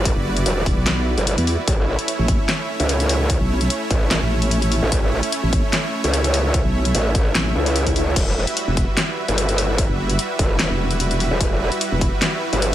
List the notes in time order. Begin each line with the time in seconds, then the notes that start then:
Already playing: G1 G3 E4 F#4 B4 D5
0.05 kick, closed hi-hat
0.16 F#1
0.37 closed hi-hat
0.46 E1, closed hi-hat
0.66 E1, kick, open hi-hat
0.77 B1
0.86 snare, clap, closed hi-hat
1.18 G1, closed hi-hat
1.27 closed hi-hat
1.38 E2, closed hi-hat
1.47 open hi-hat
1.67 A1 A3 C#4 C#5 E5, kick, closed hi-hat
1.99 closed hi-hat
2.08 closed hi-hat
2.19 A1
2.28 kick, closed hi-hat
2.49 snare, clap, closed hi-hat
2.80 C#2, closed hi-hat
2.89 closed hi-hat
3.00 closed hi-hat
3.09 open hi-hat
3.30 kick, closed hi-hat
3.41 B1
3.61 closed hi-hat
3.70 closed hi-hat
3.91 A1, kick, closed hi-hat
4.11 snare, clap, closed hi-hat
4.22 A1
4.42 closed hi-hat
4.51 closed hi-hat
4.62 closed hi-hat
4.72 open hi-hat
4.83 A1
4.92 A1, kick, closed hi-hat
5.23 closed hi-hat
5.32 closed hi-hat
5.43 A1
5.53 kick, closed hi-hat
5.73 snare, clap, closed hi-hat
6.04 C#2, closed hi-hat
6.14 closed hi-hat
6.24 closed hi-hat
6.34 open hi-hat
6.54 kick, closed hi-hat
6.65 B1
6.85 closed hi-hat
6.95 A1, closed hi-hat
7.15 kick, closed hi-hat
7.35 A1, snare, clap, closed hi-hat, swell
7.55 C#2
7.66 closed hi-hat
7.76 closed hi-hat
7.87 kick, closed hi-hat
7.96 open hi-hat
8.16 E1 G3 E4 F#4 B4, kick, closed hi-hat, crash
8.47 closed hi-hat
8.57 closed hi-hat
8.68 E1
8.77 kick, closed hi-hat
8.97 snare, clap, closed hi-hat
9.28 G1, closed hi-hat
9.38 closed hi-hat
9.49 closed hi-hat
9.58 open hi-hat
9.78 kick, closed hi-hat
9.89 F#1
10.09 closed hi-hat
10.19 closed hi-hat
10.39 E1, kick, closed hi-hat
10.59 snare, clap, closed hi-hat
10.70 E1
10.91 closed hi-hat
11.00 closed hi-hat
11.11 closed hi-hat
11.20 open hi-hat
11.31 E1
11.41 E1, kick, closed hi-hat
11.72 closed hi-hat
11.81 closed hi-hat
11.92 E1
12.01 kick, closed hi-hat
12.22 snare, clap, closed hi-hat
12.53 G1, closed hi-hat
12.62 closed hi-hat